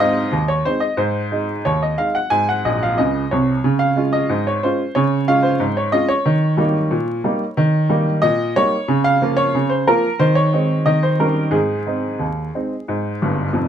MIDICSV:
0, 0, Header, 1, 2, 480
1, 0, Start_track
1, 0, Tempo, 658617
1, 719, Time_signature, 2, 2, 24, 8
1, 7438, Tempo, 666667
1, 9940, End_track
2, 0, Start_track
2, 0, Title_t, "Upright piano"
2, 0, Program_c, 0, 0
2, 0, Control_c, 0, 64, 127
2, 0, Note_on_c, 0, 44, 74
2, 0, Note_on_c, 0, 75, 86
2, 0, Note_on_c, 0, 77, 80
2, 2, Note_on_c, 0, 56, 51
2, 4, Note_on_c, 0, 60, 47
2, 5, Note_on_c, 0, 63, 50
2, 133, Note_off_c, 0, 56, 0
2, 134, Note_off_c, 0, 60, 0
2, 135, Note_off_c, 0, 63, 0
2, 233, Note_on_c, 0, 39, 62
2, 248, Control_c, 0, 64, 0
2, 251, Note_off_c, 0, 77, 0
2, 252, Note_off_c, 0, 44, 0
2, 352, Note_on_c, 0, 73, 65
2, 358, Note_off_c, 0, 75, 0
2, 440, Note_off_c, 0, 39, 0
2, 476, Note_off_c, 0, 73, 0
2, 476, Note_on_c, 0, 60, 41
2, 476, Note_on_c, 0, 72, 75
2, 477, Note_on_c, 0, 56, 38
2, 482, Note_on_c, 0, 63, 54
2, 586, Note_on_c, 0, 75, 68
2, 598, Note_off_c, 0, 72, 0
2, 609, Note_off_c, 0, 60, 0
2, 610, Note_off_c, 0, 56, 0
2, 614, Note_off_c, 0, 63, 0
2, 707, Note_on_c, 0, 44, 66
2, 709, Note_on_c, 0, 72, 67
2, 713, Note_off_c, 0, 75, 0
2, 854, Control_c, 0, 64, 127
2, 917, Note_off_c, 0, 44, 0
2, 957, Note_on_c, 0, 56, 43
2, 963, Note_on_c, 0, 63, 45
2, 1091, Note_off_c, 0, 56, 0
2, 1095, Note_off_c, 0, 63, 0
2, 1196, Note_off_c, 0, 72, 0
2, 1203, Note_on_c, 0, 73, 68
2, 1205, Note_on_c, 0, 39, 57
2, 1207, Control_c, 0, 64, 0
2, 1323, Note_off_c, 0, 73, 0
2, 1330, Note_on_c, 0, 75, 60
2, 1409, Note_off_c, 0, 39, 0
2, 1443, Note_on_c, 0, 77, 69
2, 1446, Note_on_c, 0, 56, 39
2, 1447, Note_off_c, 0, 75, 0
2, 1449, Note_on_c, 0, 63, 41
2, 1564, Note_off_c, 0, 77, 0
2, 1565, Note_on_c, 0, 78, 67
2, 1578, Note_off_c, 0, 56, 0
2, 1580, Note_off_c, 0, 63, 0
2, 1678, Note_on_c, 0, 80, 78
2, 1682, Note_on_c, 0, 44, 59
2, 1685, Note_off_c, 0, 78, 0
2, 1802, Note_off_c, 0, 80, 0
2, 1812, Note_on_c, 0, 78, 68
2, 1839, Control_c, 0, 64, 127
2, 1888, Note_off_c, 0, 44, 0
2, 1929, Note_off_c, 0, 78, 0
2, 1931, Note_on_c, 0, 34, 56
2, 1931, Note_on_c, 0, 75, 67
2, 1935, Note_on_c, 0, 46, 60
2, 2049, Note_off_c, 0, 75, 0
2, 2060, Note_on_c, 0, 77, 66
2, 2110, Note_off_c, 0, 34, 0
2, 2112, Note_off_c, 0, 46, 0
2, 2170, Note_on_c, 0, 75, 66
2, 2173, Note_off_c, 0, 77, 0
2, 2178, Control_c, 0, 64, 0
2, 2178, Note_on_c, 0, 37, 57
2, 2178, Note_on_c, 0, 49, 59
2, 2355, Note_off_c, 0, 37, 0
2, 2355, Note_off_c, 0, 49, 0
2, 2409, Note_off_c, 0, 75, 0
2, 2414, Note_on_c, 0, 73, 58
2, 2418, Note_on_c, 0, 48, 56
2, 2420, Note_on_c, 0, 36, 56
2, 2595, Note_off_c, 0, 48, 0
2, 2597, Note_off_c, 0, 36, 0
2, 2653, Note_on_c, 0, 49, 70
2, 2763, Note_on_c, 0, 77, 74
2, 2773, Note_off_c, 0, 73, 0
2, 2791, Control_c, 0, 64, 127
2, 2857, Note_off_c, 0, 49, 0
2, 2888, Note_on_c, 0, 56, 40
2, 2890, Note_on_c, 0, 61, 41
2, 2894, Note_on_c, 0, 65, 50
2, 3007, Note_off_c, 0, 77, 0
2, 3007, Note_on_c, 0, 75, 70
2, 3021, Note_off_c, 0, 56, 0
2, 3022, Note_off_c, 0, 61, 0
2, 3026, Note_off_c, 0, 65, 0
2, 3128, Note_on_c, 0, 44, 64
2, 3136, Control_c, 0, 64, 0
2, 3250, Note_off_c, 0, 75, 0
2, 3258, Note_on_c, 0, 73, 64
2, 3334, Note_off_c, 0, 44, 0
2, 3375, Note_off_c, 0, 73, 0
2, 3376, Note_on_c, 0, 56, 38
2, 3376, Note_on_c, 0, 72, 68
2, 3382, Note_on_c, 0, 65, 48
2, 3383, Note_on_c, 0, 61, 43
2, 3507, Note_off_c, 0, 56, 0
2, 3512, Note_off_c, 0, 61, 0
2, 3512, Note_off_c, 0, 65, 0
2, 3607, Note_on_c, 0, 73, 69
2, 3613, Note_on_c, 0, 49, 74
2, 3614, Note_off_c, 0, 72, 0
2, 3740, Control_c, 0, 64, 127
2, 3817, Note_off_c, 0, 49, 0
2, 3846, Note_on_c, 0, 56, 45
2, 3846, Note_on_c, 0, 61, 46
2, 3848, Note_on_c, 0, 77, 86
2, 3850, Note_off_c, 0, 73, 0
2, 3852, Note_on_c, 0, 65, 48
2, 3956, Note_on_c, 0, 72, 69
2, 3970, Note_off_c, 0, 77, 0
2, 3980, Note_off_c, 0, 56, 0
2, 3980, Note_off_c, 0, 61, 0
2, 3984, Note_off_c, 0, 65, 0
2, 4079, Note_on_c, 0, 44, 66
2, 4100, Control_c, 0, 64, 0
2, 4204, Note_off_c, 0, 72, 0
2, 4205, Note_on_c, 0, 73, 63
2, 4288, Note_off_c, 0, 44, 0
2, 4317, Note_on_c, 0, 56, 44
2, 4317, Note_on_c, 0, 75, 81
2, 4322, Note_on_c, 0, 61, 49
2, 4325, Note_on_c, 0, 65, 53
2, 4328, Note_off_c, 0, 73, 0
2, 4435, Note_on_c, 0, 73, 78
2, 4444, Note_off_c, 0, 75, 0
2, 4452, Note_off_c, 0, 56, 0
2, 4456, Note_off_c, 0, 61, 0
2, 4459, Note_off_c, 0, 65, 0
2, 4559, Note_on_c, 0, 51, 78
2, 4733, Control_c, 0, 64, 127
2, 4767, Note_off_c, 0, 51, 0
2, 4790, Note_on_c, 0, 55, 51
2, 4798, Note_on_c, 0, 58, 46
2, 4798, Note_on_c, 0, 63, 57
2, 4927, Note_off_c, 0, 55, 0
2, 4933, Note_off_c, 0, 58, 0
2, 4933, Note_off_c, 0, 63, 0
2, 5035, Note_on_c, 0, 46, 72
2, 5055, Control_c, 0, 64, 0
2, 5245, Note_off_c, 0, 46, 0
2, 5278, Note_on_c, 0, 55, 48
2, 5281, Note_on_c, 0, 58, 48
2, 5283, Note_on_c, 0, 63, 53
2, 5412, Note_off_c, 0, 55, 0
2, 5415, Note_off_c, 0, 58, 0
2, 5416, Note_off_c, 0, 63, 0
2, 5519, Note_on_c, 0, 51, 82
2, 5690, Control_c, 0, 64, 127
2, 5726, Note_off_c, 0, 51, 0
2, 5753, Note_on_c, 0, 55, 51
2, 5758, Note_on_c, 0, 58, 52
2, 5759, Note_off_c, 0, 73, 0
2, 5761, Note_on_c, 0, 63, 59
2, 5888, Note_off_c, 0, 55, 0
2, 5892, Note_off_c, 0, 58, 0
2, 5894, Note_off_c, 0, 63, 0
2, 5988, Note_on_c, 0, 75, 89
2, 5994, Note_on_c, 0, 46, 72
2, 6011, Control_c, 0, 64, 0
2, 6203, Note_off_c, 0, 46, 0
2, 6236, Note_off_c, 0, 75, 0
2, 6240, Note_on_c, 0, 73, 91
2, 6241, Note_on_c, 0, 55, 46
2, 6245, Note_on_c, 0, 58, 46
2, 6247, Note_on_c, 0, 63, 49
2, 6374, Note_off_c, 0, 55, 0
2, 6377, Note_off_c, 0, 58, 0
2, 6378, Note_off_c, 0, 63, 0
2, 6473, Note_on_c, 0, 49, 78
2, 6591, Note_on_c, 0, 77, 91
2, 6601, Note_off_c, 0, 73, 0
2, 6642, Control_c, 0, 64, 127
2, 6681, Note_off_c, 0, 49, 0
2, 6719, Note_on_c, 0, 53, 49
2, 6721, Note_on_c, 0, 58, 50
2, 6727, Note_on_c, 0, 65, 53
2, 6826, Note_on_c, 0, 73, 82
2, 6836, Note_off_c, 0, 77, 0
2, 6851, Note_off_c, 0, 53, 0
2, 6853, Note_off_c, 0, 58, 0
2, 6858, Note_off_c, 0, 65, 0
2, 6957, Note_on_c, 0, 49, 68
2, 6969, Control_c, 0, 64, 0
2, 7066, Note_on_c, 0, 72, 69
2, 7073, Note_off_c, 0, 73, 0
2, 7162, Note_off_c, 0, 49, 0
2, 7193, Note_off_c, 0, 72, 0
2, 7194, Note_on_c, 0, 53, 44
2, 7197, Note_on_c, 0, 58, 47
2, 7197, Note_on_c, 0, 70, 82
2, 7202, Note_on_c, 0, 65, 52
2, 7328, Note_off_c, 0, 53, 0
2, 7330, Note_off_c, 0, 58, 0
2, 7333, Note_off_c, 0, 65, 0
2, 7429, Note_on_c, 0, 51, 76
2, 7429, Note_on_c, 0, 72, 81
2, 7439, Note_off_c, 0, 70, 0
2, 7544, Note_on_c, 0, 73, 78
2, 7554, Note_off_c, 0, 72, 0
2, 7588, Control_c, 0, 64, 127
2, 7636, Note_off_c, 0, 51, 0
2, 7671, Note_on_c, 0, 56, 43
2, 7677, Note_on_c, 0, 60, 48
2, 7678, Note_on_c, 0, 63, 52
2, 7804, Note_off_c, 0, 56, 0
2, 7808, Note_off_c, 0, 60, 0
2, 7809, Note_off_c, 0, 63, 0
2, 7906, Note_on_c, 0, 75, 79
2, 7909, Note_off_c, 0, 73, 0
2, 7909, Note_on_c, 0, 51, 70
2, 7926, Control_c, 0, 64, 0
2, 8031, Note_off_c, 0, 75, 0
2, 8031, Note_on_c, 0, 72, 66
2, 8059, Control_c, 0, 64, 127
2, 8116, Note_off_c, 0, 51, 0
2, 8151, Note_on_c, 0, 55, 39
2, 8153, Note_off_c, 0, 72, 0
2, 8154, Note_on_c, 0, 61, 40
2, 8154, Note_on_c, 0, 70, 60
2, 8159, Note_on_c, 0, 63, 44
2, 8285, Note_off_c, 0, 55, 0
2, 8287, Note_off_c, 0, 61, 0
2, 8291, Note_off_c, 0, 63, 0
2, 8376, Note_on_c, 0, 44, 61
2, 8376, Note_on_c, 0, 68, 65
2, 8396, Note_off_c, 0, 70, 0
2, 8406, Control_c, 0, 64, 0
2, 8558, Control_c, 0, 64, 127
2, 8590, Note_off_c, 0, 44, 0
2, 8631, Note_on_c, 0, 56, 37
2, 8636, Note_on_c, 0, 60, 39
2, 8636, Note_on_c, 0, 63, 37
2, 8766, Note_off_c, 0, 56, 0
2, 8769, Note_off_c, 0, 60, 0
2, 8769, Note_off_c, 0, 63, 0
2, 8867, Note_on_c, 0, 39, 54
2, 8887, Control_c, 0, 64, 0
2, 9076, Note_off_c, 0, 39, 0
2, 9125, Note_on_c, 0, 56, 36
2, 9126, Note_on_c, 0, 60, 35
2, 9128, Note_on_c, 0, 63, 36
2, 9255, Note_off_c, 0, 56, 0
2, 9256, Note_off_c, 0, 60, 0
2, 9257, Note_off_c, 0, 63, 0
2, 9365, Note_on_c, 0, 44, 61
2, 9529, Control_c, 0, 64, 127
2, 9567, Note_off_c, 0, 44, 0
2, 9609, Note_on_c, 0, 31, 60
2, 9609, Note_on_c, 0, 43, 57
2, 9785, Note_off_c, 0, 43, 0
2, 9786, Note_off_c, 0, 31, 0
2, 9829, Note_off_c, 0, 68, 0
2, 9834, Note_on_c, 0, 29, 58
2, 9836, Note_on_c, 0, 41, 56
2, 9844, Control_c, 0, 64, 0
2, 9940, Note_off_c, 0, 29, 0
2, 9940, Note_off_c, 0, 41, 0
2, 9940, End_track
0, 0, End_of_file